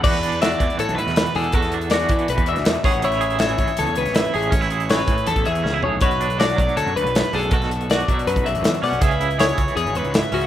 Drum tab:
CC |x---------------|----------------|----------------|----------------|
HH |-xxxxxxxxxxxxxox|xxxxxxxxxxxxxxox|xxxxxxxxxxxxxxox|xxxxxxxxxxxx----|
SD |-o--o------oo---|-o--oo-----oo-o-|-o--o------oo---|-o--oo------o---|
FT |----------------|----------------|----------------|--------------o-|
BD |o-----o---------|o-----o--o----o-|------o---------|o-----o--o------|

CC |----------------|----------------|----------------|
HH |xxxxxxxxxxxxxxox|xxxxxxxxxxxxxxox|xxxxxxxxxxxxxxox|
SD |----oo------o---|-o--o-------o-o-|----o-------o---|
FT |----------------|----------------|----------------|
BD |o-----o---------|o-----o--o------|o-----o---------|